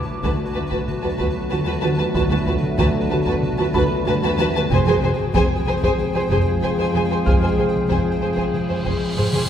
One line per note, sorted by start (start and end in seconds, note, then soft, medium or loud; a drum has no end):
0.00 4.67 F#3 medium
0.00 4.67 A3 medium
0.00 4.67 B3 medium
0.00 4.67 D4 medium
0.00 4.71 F#4 medium
0.00 4.70 B4 medium
0.00 4.67 A5 medium
0.00 1.79 D6 medium
0.08 taiko mid soft
0.23 0.30 D2 medium
0.23 0.30 F#4 medium
0.23 0.30 B4 medium
0.23 0.30 A5 medium
0.23 taiko medium
0.54 0.62 D2 medium
0.54 0.62 D2 soft
0.54 0.62 F#4 soft
0.54 0.61 B4 medium
0.54 0.61 A5 soft
0.70 0.78 D2 medium
0.70 0.78 F#4 medium
0.70 0.76 B4 medium
0.70 0.77 A5 medium
0.70 taiko medium
0.87 taiko mid medium
1.02 1.11 D2 medium
1.02 1.10 F#4 soft
1.02 1.09 B4 soft
1.02 1.09 A5 soft
1.18 1.26 D2 medium
1.18 1.26 F#4 medium
1.18 1.25 B4 medium
1.18 1.25 A5 medium
1.18 taiko medium
1.50 1.58 D2 medium
1.50 1.58 D2 soft
1.50 1.58 F#4 medium
1.50 1.57 B4 medium
1.50 1.57 A5 medium
1.65 1.73 D2 medium
1.65 1.74 F#4 medium
1.65 1.73 B4 medium
1.65 1.72 A5 medium
1.81 1.89 D2 medium
1.81 1.90 D2 medium
1.81 1.90 F#4 medium
1.81 1.89 B4 medium
1.81 1.88 A5 medium
1.98 2.05 D2 medium
1.98 2.06 F#4 medium
1.98 2.05 B4 medium
1.98 2.04 A5 medium
2.14 2.21 D2 medium
2.14 2.22 D2 medium
2.14 2.22 F#4 medium
2.14 2.21 B4 medium
2.14 2.21 A5 medium
2.14 taiko medium
2.30 2.37 D2 medium
2.30 2.38 F#4 medium
2.30 2.37 B4 soft
2.30 2.37 A5 medium
2.46 2.53 D2 medium
2.46 2.54 D2 medium
2.46 2.54 F#4 medium
2.46 2.53 B4 medium
2.46 2.53 A5 medium
2.46 taiko mid medium
2.63 taiko mid soft
2.78 2.85 D2 medium
2.78 2.86 F#4 medium
2.78 2.85 B4 medium
2.78 2.84 A5 medium
2.78 taiko medium
3.10 3.17 D2 medium
3.10 3.18 F#4 medium
3.10 3.17 B4 medium
3.10 3.17 A5 medium
3.25 3.33 D2 medium
3.25 3.34 F#4 medium
3.25 3.33 B4 medium
3.25 3.32 A5 medium
3.25 taiko medium
3.42 taiko mid medium
3.58 3.64 D2 medium
3.58 3.65 F#4 medium
3.58 3.66 B4 medium
3.58 3.65 A5 medium
3.74 3.81 D2 loud
3.74 3.82 D2 medium
3.74 3.81 F#4 medium
3.74 3.82 B4 loud
3.74 3.81 A5 medium
3.74 5.62 B5 medium
3.74 taiko medium
4.06 4.12 D2 medium
4.06 4.13 D2 medium
4.06 4.13 F#4 medium
4.06 4.14 B4 medium
4.06 4.13 A5 medium
4.22 4.29 D2 loud
4.22 4.29 F#4 medium
4.22 4.30 B4 medium
4.22 4.29 A5 medium
4.38 4.45 D2 medium
4.38 4.46 F#4 medium
4.38 4.47 B4 medium
4.38 4.45 A5 medium
4.54 4.61 D2 medium
4.54 4.62 F#4 medium
4.54 4.62 B4 medium
4.54 4.62 A5 medium
4.70 4.77 F1 loud
4.70 4.76 F2 loud
4.70 9.45 F3 medium
4.70 9.45 G#3 medium
4.70 9.46 C4 medium
4.70 9.49 G#4 medium
4.70 9.46 G#4 medium
4.70 4.78 G#4 medium
4.70 9.49 C5 medium
4.70 4.79 C5 medium
4.70 9.49 G5 medium
4.70 4.77 G#5 medium
4.70 taiko medium
4.86 4.93 F2 medium
4.86 4.94 G#4 medium
4.86 4.94 C5 medium
4.86 4.93 G#5 medium
5.02 5.09 F1 medium
5.02 5.08 F2 medium
5.02 5.10 G#4 medium
5.02 5.09 C5 medium
5.02 5.09 G#5 medium
5.02 taiko mid medium
5.19 taiko mid soft
5.34 5.41 F1 medium
5.34 5.40 F2 medium
5.34 5.41 G#4 medium
5.34 5.42 C5 medium
5.34 5.41 G#5 medium
5.34 taiko medium
5.66 5.73 F1 medium
5.66 5.72 F2 medium
5.66 5.74 G#4 medium
5.66 5.74 C5 medium
5.66 5.73 G#5 medium
5.81 5.88 F2 medium
5.81 5.89 G#4 medium
5.81 5.90 C5 medium
5.81 5.90 G#5 medium
5.81 taiko medium
5.99 taiko mid medium
6.14 6.20 F2 medium
6.14 6.22 G#4 medium
6.14 6.21 C5 medium
6.14 6.21 G#5 medium
6.30 6.37 F1 medium
6.30 6.36 F2 medium
6.30 6.38 G#4 medium
6.30 6.37 C5 medium
6.30 6.37 G#5 medium
6.30 taiko medium
6.61 6.69 F1 medium
6.61 6.68 F2 medium
6.61 6.70 G#4 medium
6.61 6.69 C5 medium
6.61 6.68 G#5 medium
6.77 6.84 F2 medium
6.77 6.85 G#4 medium
6.77 6.85 C5 medium
6.77 6.85 G#5 medium
6.93 7.01 F1 soft
6.93 7.00 F2 soft
6.93 7.01 G#4 medium
6.93 7.01 C5 medium
6.93 7.01 G#5 medium
7.09 7.16 F2 soft
7.09 7.17 G#4 medium
7.09 7.17 C5 medium
7.09 7.17 G#5 medium
7.25 7.33 F1 medium
7.25 7.31 F2 medium
7.25 7.33 G#4 medium
7.25 7.32 C5 medium
7.25 9.14 F5 soft
7.25 7.33 G#5 medium
7.25 9.13 F6 medium
7.25 taiko medium
7.25 cymbal swell soft
7.41 7.47 F2 soft
7.41 7.48 G#4 soft
7.41 7.48 C5 soft
7.41 7.50 G#5 soft
7.57 7.65 F1 soft
7.57 7.64 F2 soft
7.57 7.65 G#4 soft
7.57 7.65 C5 soft
7.57 7.65 G#5 soft
7.57 taiko mid medium
7.74 taiko mid soft
7.88 7.96 F1 medium
7.88 7.95 F2 medium
7.88 7.96 G#4 soft
7.88 7.96 C5 medium
7.88 7.97 G#5 medium
7.88 taiko medium
8.20 8.29 F1 soft
8.20 8.27 F2 soft
8.20 8.28 G#4 soft
8.20 8.28 C5 soft
8.20 8.28 G#5 soft
8.36 8.43 F2 medium
8.36 8.43 G#4 medium
8.36 8.43 C5 medium
8.36 8.44 G#5 medium
8.36 taiko medium
8.54 taiko mid medium
8.69 8.75 F2 soft
8.69 8.76 G#4 soft
8.69 8.75 C5 soft
8.69 8.76 G#5 soft
8.84 8.92 F1 medium
8.84 8.92 F2 medium
8.84 8.91 G#4 soft
8.84 8.91 C5 medium
8.84 8.91 G#5 medium
8.84 taiko medium
9.17 9.25 F1 soft
9.17 9.23 F2 soft
9.17 9.24 G#4 soft
9.17 9.24 C5 soft
9.17 9.23 G#5 soft
9.17 taiko low-mid medium
9.33 9.39 F2 medium
9.33 9.40 G#4 medium
9.33 9.40 C5 medium
9.33 9.39 G#5 medium
9.33 taiko mid medium